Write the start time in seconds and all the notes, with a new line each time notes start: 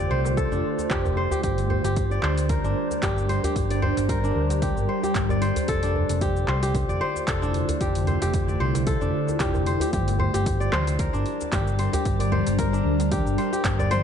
Already playing: D3 A3 D4 F4 G4 C5
0.00 D5
0.10 C2 C5, djembe tone
0.25 djembe slap, djembe tone, cabasa
0.37 A4, kick, cabasa
0.52 F1 D4, djembe slap, cabasa
0.79 djembe slap, djembe tone, cabasa
0.90 F1 G4, kick, clap, cabasa
1.05 djembe tone, djembe bass, cabasa
1.17 C5
1.31 G4, djembe slap, djembe bass, cabasa
1.43 G1 G3 D4 G4 A#4 A5, kick, open hi-hat, cabasa
1.58 open hi-hat, cabasa
1.70 C5, djembe bass
1.84 G1 G4, open hi-hat, djembe slap, cabasa
1.96 kick, open hi-hat, cabasa
2.11 D5, cabasa
2.23 D2 C5, clap
2.38 open hi-hat, djembe slap, cabasa
2.49 A#4, kick, open hi-hat, djembe bass, cabasa
2.64 G1 D4, cabasa
2.91 djembe tone, cabasa
3.03 G1 G4, kick, clap, open hi-hat, cabasa
3.17 djembe tone, cabasa
3.29 C5, open hi-hat, djembe tone
3.44 G4, open hi-hat, djembe bass, cabasa
3.56 G1 G4, kick, open hi-hat, cabasa
3.70 D5, open hi-hat, cabasa
3.82 C5, djembe bass
3.97 G1, open hi-hat, djembe slap, cabasa
4.09 A#4, kick, open hi-hat, cabasa
4.24 D4, djembe tone, cabasa
4.36 D2, djembe tone
4.50 open hi-hat, djembe slap, djembe tone, cabasa
4.62 G4, kick, open hi-hat, cabasa
4.77 G1, djembe slap, cabasa
4.89 C5
5.03 G4, djembe slap, djembe tone, cabasa
5.15 G1, kick, clap, open hi-hat, cabasa
5.29 D5, djembe tone, djembe bass, cabasa
5.42 C5, open hi-hat
5.56 open hi-hat, djembe slap, djembe bass, cabasa
5.68 F1 D3 A3 E4 F4 A4, kick, open hi-hat, cabasa
5.83 D4, open hi-hat, cabasa
5.96 djembe bass
6.09 F1, open hi-hat, djembe slap, cabasa
6.21 G4, kick, open hi-hat, cabasa
6.36 cabasa
6.48 C2 C5, clap
6.62 G4, open hi-hat, djembe slap, cabasa
6.75 kick, open hi-hat, djembe bass, cabasa
6.89 F1 D5, cabasa
7.01 C5
7.16 djembe tone, cabasa
7.27 F1 A4, kick, clap, open hi-hat, cabasa
7.42 D4, djembe tone, cabasa
7.54 open hi-hat, djembe tone
7.69 open hi-hat, djembe bass, cabasa
7.81 F1 G4, kick, open hi-hat, cabasa
7.95 open hi-hat, cabasa
8.07 C5, open hi-hat, djembe bass
8.22 F1 G4, open hi-hat, djembe slap, cabasa
8.34 kick, open hi-hat, cabasa
8.48 D5, djembe tone, cabasa
8.60 C2 C5, djembe tone
8.74 open hi-hat, djembe slap, djembe tone, cabasa
8.87 A4, kick, open hi-hat, cabasa
9.01 F1 D4, djembe slap, cabasa
9.28 djembe slap, djembe tone, cabasa
9.40 F1 G4, kick, clap, open hi-hat, cabasa
9.54 djembe tone, djembe bass, cabasa
9.66 C5, open hi-hat
9.80 G4, open hi-hat, djembe slap, djembe bass, cabasa
9.93 G1 G3 D4 G4 A#4 A5, kick, mid tom, open hi-hat, cabasa
10.08 open hi-hat, djembe tone, cabasa
10.19 C5, djembe bass
10.34 G1 G4, open hi-hat, djembe slap, cabasa
10.46 kick, open hi-hat, cabasa
10.60 D5, cabasa
10.72 D2 C5, clap, mid tom
10.87 open hi-hat, djembe slap, cabasa
10.99 A#4, kick, open hi-hat, djembe bass, cabasa
11.13 G1 D4, cabasa
11.26 open hi-hat
11.41 djembe tone, cabasa
11.52 G1 G4, kick, clap, mid tom, open hi-hat, cabasa
11.67 cabasa
11.79 C5, open hi-hat
11.93 G4, open hi-hat, djembe tone, djembe bass, cabasa
12.05 G1, kick, open hi-hat, cabasa
12.19 D5, open hi-hat, djembe tone, cabasa
12.32 C5, mid tom, djembe bass
12.47 G1, open hi-hat, djembe slap, cabasa
12.58 A#4, kick, open hi-hat, cabasa
12.73 D4, cabasa
12.85 D2
13.00 open hi-hat, djembe slap, cabasa
13.11 G4, kick, mid tom, open hi-hat, cabasa
13.26 G1, djembe slap, cabasa
13.38 C5, open hi-hat
13.53 G4, djembe slap, cabasa
13.65 G1, kick, clap, open hi-hat, cabasa
13.79 D5, djembe bass, cabasa
13.91 C5, mid tom, open hi-hat